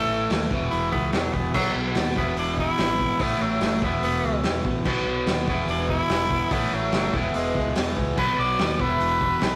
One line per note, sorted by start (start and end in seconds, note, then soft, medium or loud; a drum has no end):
0.00 0.49 A2 medium
0.00 0.10 E3 medium
0.00 0.51 E3 medium
0.00 0.51 A3 medium
0.00 0.29 A4 loud
0.08 0.26 A1 medium
0.08 0.51 A3 soft
0.08 0.50 C#4 medium
0.08 0.48 E4 medium
0.30 0.47 D#2 medium
0.30 snare loud
0.30 open hi-hat medium
0.49 0.67 E1 medium
0.49 1.11 E2 medium
0.49 1.12 B2 medium
0.49 0.71 E3 soft
0.49 0.72 G#3 soft
0.49 0.72 B3 soft
0.49 0.71 E4 medium
0.49 kick loud
0.53 1.13 E3 medium
0.71 0.89 E1 medium
0.71 0.93 E2 medium
0.71 0.93 B2 medium
0.71 0.93 E3 medium
0.71 0.92 G#3 medium
0.71 0.92 B3 medium
0.71 0.91 E4 medium
0.71 open hi-hat soft
0.92 1.09 C#2 medium
0.92 1.11 E3 soft
0.92 1.12 G#3 soft
0.92 1.12 B3 medium
0.92 1.13 B3 soft
0.92 1.13 E4 soft
0.92 kick medium
1.12 1.53 E2 medium
1.12 1.30 E2 medium
1.12 1.52 B2 medium
1.12 1.54 E3 medium
1.12 1.55 E3 medium
1.12 1.35 F#3 medium
1.12 1.55 G#3 medium
1.12 1.54 B3 medium
1.12 1.55 E4 medium
1.12 snare loud
1.12 open hi-hat medium
1.33 1.50 E1 medium
1.33 1.54 B3 medium
1.33 kick medium
1.53 1.71 B1 medium
1.53 2.15 B2 medium
1.53 1.75 B2 medium
1.53 1.75 F#3 medium
1.53 1.75 F#3 loud
1.53 2.16 F#3 medium
1.53 1.75 B3 medium
1.53 1.74 D#4 medium
1.53 1.72 F#4 medium
1.53 kick loud
1.53 crash medium
1.57 2.17 B3 loud
1.73 1.92 B1 medium
1.73 2.14 B3 soft
1.73 2.15 D#4 soft
1.73 2.15 F#4 medium
1.95 2.12 D#2 loud
1.95 snare loud
1.95 open hi-hat medium
2.15 2.33 E1 medium
2.15 2.76 E2 medium
2.15 2.78 B2 medium
2.15 2.36 E3 soft
2.15 2.36 G#3 soft
2.15 2.36 B3 soft
2.15 2.37 B3 medium
2.15 2.37 E4 soft
2.15 kick loud
2.19 2.79 E3 medium
2.36 2.70 E1 medium
2.36 2.58 E2 medium
2.36 2.58 B2 medium
2.36 2.57 E3 medium
2.36 2.57 G#3 medium
2.36 2.56 B3 medium
2.36 2.58 D4 medium
2.36 2.54 E4 medium
2.36 open hi-hat medium
2.56 2.76 E3 soft
2.56 2.77 G#3 soft
2.56 2.78 B3 soft
2.56 2.78 E4 medium
2.56 3.23 E4 loud
2.56 kick medium
2.77 3.12 G#1 loud
2.77 3.18 E2 medium
2.77 3.17 B2 medium
2.77 2.99 E3 medium
2.77 2.98 G#3 medium
2.77 2.97 B3 medium
2.77 2.96 E4 medium
2.77 snare loud
2.77 open hi-hat medium
2.82 3.19 E3 medium
2.98 3.16 E3 soft
2.98 3.17 G#3 soft
2.98 3.18 B3 soft
2.98 3.18 E4 medium
2.98 kick medium
3.17 3.37 A1 medium
3.17 3.39 A2 medium
3.17 3.80 A2 medium
3.17 3.40 E3 medium
3.17 3.81 E3 loud
3.17 3.40 A3 medium
3.17 3.39 C#4 medium
3.17 3.37 E4 medium
3.17 kick loud
3.17 open hi-hat medium
3.22 3.82 A3 loud
3.22 3.44 B3 loud
3.39 3.57 A1 medium
3.39 3.62 F#3 medium
3.39 3.83 A3 soft
3.39 3.82 C#4 medium
3.39 3.80 E4 soft
3.61 3.78 F#1 loud
3.61 3.83 F#3 medium
3.61 snare loud
3.61 open hi-hat medium
3.80 3.99 E1 medium
3.80 4.42 E2 medium
3.80 4.43 B2 medium
3.80 4.02 G#3 soft
3.80 4.03 B3 soft
3.80 4.03 B3 medium
3.80 4.03 E4 soft
3.80 kick loud
3.84 4.44 E3 medium
4.02 4.19 E1 medium
4.02 4.23 E2 medium
4.02 4.24 B2 medium
4.02 4.24 E3 medium
4.02 4.24 G#3 medium
4.02 4.24 B3 medium
4.02 4.44 B3 medium
4.02 4.22 E4 medium
4.02 open hi-hat medium
4.23 4.40 C#2 medium
4.23 4.44 G#3 soft
4.23 4.44 B3 soft
4.23 4.44 E4 soft
4.43 4.84 E2 medium
4.43 4.60 E2 medium
4.43 4.83 B2 medium
4.43 4.65 E3 medium
4.43 4.65 G#3 medium
4.43 4.64 B3 medium
4.43 4.63 E4 medium
4.43 snare loud
4.43 open hi-hat medium
4.47 4.86 E3 medium
4.64 4.82 A1 medium
4.64 4.84 E3 soft
4.64 4.85 G#3 medium
4.64 4.84 B3 soft
4.64 4.85 E4 soft
4.64 kick medium
4.84 5.02 B1 medium
4.84 5.46 B2 medium
4.84 5.06 B2 medium
4.84 5.06 F#3 medium
4.84 5.47 F#3 medium
4.84 5.06 B3 medium
4.84 5.48 B3 medium
4.84 5.05 D#4 medium
4.84 5.04 F#4 medium
4.84 kick loud
4.84 crash loud
5.05 5.23 B1 medium
5.05 5.47 B3 soft
5.05 5.48 D#4 medium
5.05 5.47 F#4 medium
5.26 5.49 D#2 loud
5.26 snare loud
5.26 open hi-hat medium
5.47 5.64 E1 medium
5.47 6.08 E2 medium
5.47 6.09 B2 medium
5.47 5.67 E3 soft
5.47 6.10 E3 medium
5.47 5.68 G#3 soft
5.47 5.68 B3 medium
5.47 5.68 B3 soft
5.47 5.68 E4 soft
5.47 kick loud
5.67 6.01 E1 medium
5.67 5.89 E2 medium
5.67 5.89 B2 medium
5.67 5.89 E3 medium
5.67 5.90 G#3 medium
5.67 5.88 B3 medium
5.67 5.89 D4 medium
5.67 5.88 E4 medium
5.67 open hi-hat medium
5.89 6.07 E3 soft
5.89 6.09 G#3 soft
5.89 6.09 B3 soft
5.89 6.10 E4 medium
5.89 6.54 E4 loud
5.89 kick medium
6.09 6.43 E1 loud
6.09 6.50 E2 medium
6.09 6.49 B2 medium
6.09 6.30 E3 medium
6.09 6.31 G#3 medium
6.09 6.31 B3 medium
6.09 6.30 E4 medium
6.09 snare loud
6.09 open hi-hat medium
6.13 6.51 E3 medium
6.30 6.49 E3 soft
6.30 6.51 G#3 soft
6.30 6.52 B3 medium
6.30 6.51 E4 soft
6.30 kick medium
6.50 6.68 A1 medium
6.50 7.12 A2 medium
6.50 6.72 A2 medium
6.50 6.72 E3 medium
6.50 7.13 E3 loud
6.50 6.72 A3 medium
6.50 7.14 A3 medium
6.50 6.76 B3 medium
6.50 6.73 C#4 medium
6.50 6.71 E4 medium
6.50 kick loud
6.50 open hi-hat medium
6.73 6.89 A1 medium
6.73 6.93 F#3 medium
6.73 7.14 A3 soft
6.73 7.12 E4 medium
6.92 7.09 F#1 loud
6.92 7.16 F#3 medium
6.92 snare loud
6.92 open hi-hat medium
7.12 7.30 E1 medium
7.12 7.73 E2 medium
7.12 7.75 B2 medium
7.12 7.34 E3 soft
7.12 7.76 E3 medium
7.12 7.35 G#3 soft
7.12 7.35 B3 soft
7.12 7.36 B3 medium
7.12 7.34 E4 soft
7.12 kick loud
7.34 7.51 E1 medium
7.34 7.55 E2 medium
7.34 7.56 B2 medium
7.34 7.56 E3 medium
7.34 7.75 G#3 loud
7.34 7.55 G#3 medium
7.34 7.54 B3 medium
7.34 7.53 E4 medium
7.34 open hi-hat soft
7.54 7.72 C#2 medium
7.54 7.74 E3 soft
7.54 7.76 E4 soft
7.54 kick medium
7.74 8.15 E2 medium
7.74 7.93 E2 medium
7.74 8.15 B2 medium
7.74 8.17 E3 medium
7.74 8.18 G#3 medium
7.74 8.17 B3 medium
7.74 8.19 E4 medium
7.74 snare loud
7.74 open hi-hat medium
7.79 8.18 E3 medium
7.97 8.13 C#2 medium
7.97 kick medium
8.16 8.34 B1 loud
8.16 8.78 B2 medium
8.16 8.38 B2 medium
8.16 8.38 F#3 medium
8.16 8.79 F#3 medium
8.16 8.38 B3 medium
8.16 8.80 B3 medium
8.16 8.36 F#4 loud
8.16 8.38 B4 loud
8.16 kick loud
8.16 crash loud
8.37 8.55 B1 medium
8.37 8.78 B3 soft
8.37 8.79 D#4 soft
8.37 8.78 F#4 medium
8.37 8.82 D5 loud
8.59 8.75 D#2 loud
8.59 snare loud
8.59 open hi-hat medium
8.78 8.96 E1 medium
8.78 9.39 E2 medium
8.78 9.21 E2 medium
8.78 9.21 B2 medium
8.78 9.41 B2 medium
8.78 9.21 E3 medium
8.78 9.21 G#3 medium
8.78 9.21 B3 medium
8.78 9.20 E4 medium
8.78 9.56 B4 loud
8.78 kick loud
8.83 9.42 E3 medium
9.00 9.33 E1 medium
9.00 open hi-hat soft
9.21 9.39 E3 soft
9.21 9.40 G#3 soft
9.21 9.41 B3 medium
9.21 9.42 E4 medium
9.21 kick medium
9.40 9.56 B1 loud
9.40 9.56 E2 medium
9.40 9.56 B2 medium
9.40 9.56 E3 medium
9.40 9.56 G#3 medium
9.40 9.56 B3 medium
9.40 9.56 E4 medium
9.40 snare loud
9.40 open hi-hat medium
9.45 9.56 E3 medium